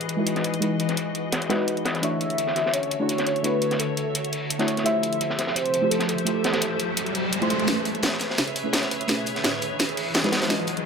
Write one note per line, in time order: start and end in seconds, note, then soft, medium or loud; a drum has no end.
0.00 2.00 E3 medium
0.00 0.15 G#3 medium
0.00 0.15 D#4 medium
0.00 0.16 E4 medium
0.00 0.16 F#4 medium
0.00 4.81 F#4 medium
0.00 1.99 G#4 medium
0.00 0.17 B4 medium
0.00 1.99 B4 medium
0.00 2.00 D#5 medium
0.00 closed hi-hat soft
0.09 closed hi-hat medium
0.17 0.59 G#3 medium
0.17 0.59 D#4 medium
0.17 0.60 E4 medium
0.17 0.60 F#4 medium
0.17 0.61 B4 medium
0.26 closed hi-hat medium
0.36 snare soft
0.36 closed hi-hat soft
0.44 closed hi-hat medium
0.54 closed hi-hat soft
0.60 1.47 G#3 medium
0.60 1.48 D#4 medium
0.60 1.48 E4 medium
0.60 1.48 F#4 medium
0.60 1.49 B4 medium
0.60 closed hi-hat medium
0.80 closed hi-hat medium
0.89 snare soft
0.89 closed hi-hat soft
0.97 closed hi-hat medium
1.15 closed hi-hat medium
1.32 snare loud
1.32 closed hi-hat medium
1.42 closed hi-hat soft
1.49 1.56 G#3 loud
1.49 1.57 D#4 medium
1.49 1.57 E4 medium
1.49 1.57 F#4 medium
1.49 1.57 B4 loud
1.49 snare loud
1.49 closed hi-hat medium
1.58 2.00 G#3 medium
1.58 2.00 D#4 medium
1.58 2.01 E4 medium
1.58 2.01 F#4 medium
1.58 2.02 B4 medium
1.68 closed hi-hat medium
1.77 closed hi-hat soft
1.85 snare medium
1.85 closed hi-hat medium
1.95 snare soft
1.95 closed hi-hat soft
2.01 4.83 D3 medium
2.01 2.97 A3 medium
2.01 2.98 D4 medium
2.01 2.98 E4 medium
2.01 2.99 F#4 medium
2.01 7.64 A4 medium
2.01 4.83 C#5 medium
2.01 2.99 C#5 medium
2.01 7.64 E5 medium
2.01 2.75 E5 loud
2.01 closed hi-hat medium
2.21 closed hi-hat medium
2.30 closed hi-hat soft
2.38 closed hi-hat medium
2.47 snare soft
2.56 snare soft
2.56 closed hi-hat medium
2.66 snare soft
2.74 3.46 C#5 loud
2.74 closed hi-hat medium
2.83 closed hi-hat soft
2.91 closed hi-hat medium
2.99 3.42 A3 medium
2.99 3.42 D4 medium
2.99 3.42 E4 medium
2.99 3.43 F#4 medium
2.99 3.43 C#5 medium
3.09 closed hi-hat medium
3.18 snare soft
3.18 closed hi-hat soft
3.27 closed hi-hat medium
3.36 closed hi-hat soft
3.43 4.30 A3 medium
3.43 4.30 D4 medium
3.43 4.30 E4 medium
3.43 4.31 F#4 medium
3.43 3.81 B4 medium
3.43 4.31 C#5 medium
3.43 closed hi-hat medium
3.61 closed hi-hat medium
3.71 snare soft
3.71 closed hi-hat soft
3.79 4.15 A4 medium
3.79 closed hi-hat medium
3.97 closed hi-hat medium
4.15 closed hi-hat medium
4.25 closed hi-hat soft
4.32 closed hi-hat medium
4.32 open hi-hat medium
4.50 closed hi-hat medium
4.59 4.82 A3 medium
4.59 4.83 D4 medium
4.59 4.83 E4 medium
4.59 4.84 F#4 medium
4.59 4.84 C#5 loud
4.59 snare soft
4.59 closed hi-hat soft
4.68 closed hi-hat medium
4.77 snare soft
4.77 closed hi-hat soft
4.84 7.65 F3 medium
4.84 5.80 A3 medium
4.84 5.80 E4 medium
4.84 5.81 F4 medium
4.84 7.65 G4 medium
4.84 5.81 G4 medium
4.84 7.65 C5 medium
4.84 5.81 C5 medium
4.84 5.57 E5 loud
4.84 closed hi-hat medium
4.84 riser medium
5.03 closed hi-hat medium
5.13 closed hi-hat soft
5.21 closed hi-hat medium
5.30 snare soft
5.39 snare soft
5.39 closed hi-hat medium
5.47 snare soft
5.55 5.92 C5 loud
5.55 closed hi-hat medium
5.66 closed hi-hat soft
5.74 closed hi-hat medium
5.81 6.24 A3 medium
5.81 6.24 E4 medium
5.81 6.24 F4 medium
5.81 6.25 G4 medium
5.81 6.25 C5 medium
5.90 6.07 A4 medium
5.90 closed hi-hat medium
5.99 snare soft
5.99 closed hi-hat soft
6.08 7.46 A4 loud
6.08 closed hi-hat medium
6.18 closed hi-hat soft
6.25 7.12 A3 medium
6.25 7.12 E4 medium
6.25 7.13 F4 medium
6.25 7.13 G4 medium
6.25 7.14 C5 medium
6.25 closed hi-hat medium
6.44 snare loud
6.44 closed hi-hat medium
6.53 snare loud
6.53 closed hi-hat soft
6.53 closed hi-hat medium
6.61 closed hi-hat medium
6.79 closed hi-hat medium
6.97 closed hi-hat loud
6.97 closed hi-hat medium
7.06 closed hi-hat soft
7.15 closed hi-hat medium
7.15 open hi-hat medium
7.33 closed hi-hat medium
7.41 7.65 A3 medium
7.41 7.66 E4 medium
7.41 7.66 F4 medium
7.41 7.66 G4 medium
7.41 7.66 C5 loud
7.41 closed hi-hat soft
7.50 closed hi-hat medium
7.60 closed hi-hat soft
7.66 8.19 A1 medium
7.66 8.62 A3 medium
7.66 8.63 C#4 medium
7.66 10.86 G#4 medium
7.66 10.86 B4 medium
7.66 8.64 B4 loud
7.66 10.30 C#5 medium
7.66 10.30 E5 medium
7.66 snare soft
7.66 closed hi-hat medium
7.66 riser medium
7.85 closed hi-hat medium
7.95 closed hi-hat soft
8.03 snare soft
8.03 snare loud
8.03 closed hi-hat medium
8.12 snare soft
8.19 8.75 E1 loud
8.19 snare soft
8.19 closed hi-hat medium
8.30 snare soft
8.38 9.10 C#4 loud
8.38 snare soft
8.38 closed hi-hat medium
8.48 closed hi-hat soft
8.56 closed hi-hat medium
8.64 9.06 A3 medium
8.64 9.06 C#4 medium
8.64 9.07 E4 medium
8.64 9.07 G#4 medium
8.64 9.08 B4 medium
8.73 8.99 A1 medium
8.73 snare loud
8.73 snare soft
8.73 closed hi-hat medium
8.83 snare soft
8.83 closed hi-hat soft
8.91 closed hi-hat medium
9.00 9.25 C#2 loud
9.00 closed hi-hat soft
9.07 9.94 A3 medium
9.07 9.43 B3 loud
9.07 9.95 C#4 medium
9.07 9.95 E4 medium
9.07 9.96 G#4 medium
9.07 9.96 B4 medium
9.07 snare soft
9.07 closed hi-hat medium
9.26 closed hi-hat medium
9.36 snare soft
9.36 closed hi-hat soft
9.44 9.77 A3 medium
9.44 snare loud
9.44 snare medium
9.44 closed hi-hat medium
9.62 9.96 E1 loud
9.62 closed hi-hat medium
9.79 snare medium
9.79 closed hi-hat medium
9.89 closed hi-hat soft
9.97 closed hi-hat medium
9.97 open hi-hat medium
10.14 10.49 E1 medium
10.14 snare medium
10.14 snare loud
10.14 closed hi-hat medium
10.23 10.47 G#3 loud
10.23 10.48 D#4 medium
10.23 10.48 E4 medium
10.23 10.48 F#4 medium
10.23 10.49 B4 loud
10.23 snare medium
10.23 closed hi-hat soft
10.32 10.86 D#5 medium
10.32 10.86 F#5 medium
10.32 snare loud
10.32 closed hi-hat medium
10.42 snare loud
10.42 closed hi-hat medium
10.42 closed hi-hat soft
10.48 10.86 E1 loud
10.48 10.86 G#3 medium
10.48 10.86 E4 medium
10.48 10.86 E4 loud
10.48 10.86 F#4 medium
10.48 10.86 B4 loud
10.48 10.86 D#5 medium
10.48 snare medium
10.48 closed hi-hat medium
10.67 closed hi-hat medium
10.77 closed hi-hat soft